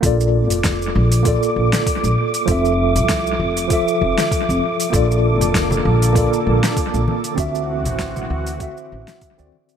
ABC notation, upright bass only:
X:1
M:4/4
L:1/16
Q:"Swing 16ths" 1/4=98
K:Bblyd
V:1 name="Upright bass" clef=bass
B,,,3 F,,,3 B,,,3 z B,,, z2 B,,, z2 | F,,,3 C,,3 F,,,3 z F,,, z2 F,,, z2 | B,,,3 F,,,3 B,,,3 z B,,, z2 B,,, z2 | D,,3 A,,,3 D,,3 z A,,, z2 D,, z2 |]